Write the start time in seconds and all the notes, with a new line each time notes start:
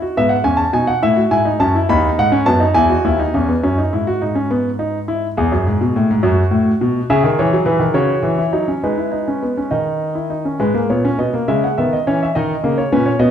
0.02 F#4
0.17 G#2 B3 E5
0.29 F#5
0.44 E2 C#4 G#5
0.57 A5
0.73 B2 D#4 G#5
0.87 F#5
1.02 A2 E4 E5
1.17 F#4
1.31 G#2 E4 G#5
1.45 D#4
1.60 F#2 C#4 A5
1.75 E4
1.89 D#2 D#4 B5
2.19 G#2 F#5
2.32 C#4
2.46 F#2 B3 A5
2.60 D#4
2.74 E2 E4 G#5
2.90 F#4
3.05 D#2 E4
3.19 D#4
3.34 E2 C#4
3.49 B3
3.63 F#2 C#4
3.78 D#4
3.93 G#2 E4
4.07 F#4
4.22 G#2 D#4
4.35 C#4
4.51 B3
4.79 D#4
5.08 E4
5.37 E2 G#4
5.52 F#2
5.67 G#2
5.81 B2
5.96 A2
6.11 G#2
6.23 F#2 F#4
6.51 A2
6.81 B2
7.10 C#3 G#4 E5
7.24 D#3
7.39 E3 C#5
7.53 F#3
7.66 E3 B4
7.79 D#3
7.94 C#3 F#4 C#5
8.23 E3
8.38 E4
8.53 F#3 D#4
8.68 C#4
8.83 G#3 D#4 B4
8.98 E4
9.12 D#4
9.28 C#4
9.43 B3
9.57 C#4
9.71 D#3 D#4 D#5
10.15 E4
10.30 D#4
10.45 C#4
10.60 G#2 G#3 B4
10.74 A#3
10.90 A#2 B3 C#5
11.05 C#4
11.19 B2 B3 D#5
11.34 A#3
11.48 C#3 G#3 E5
11.64 F#5
11.78 D#3 B3 E5
11.93 D#5
12.07 E3 C#4 C#5
12.23 E5
12.35 D#3 D#4 D#5
12.64 C#3 A#3
12.78 C#5
12.92 A#2 C#4 B4
13.06 C#5
13.19 B2 B3 D#5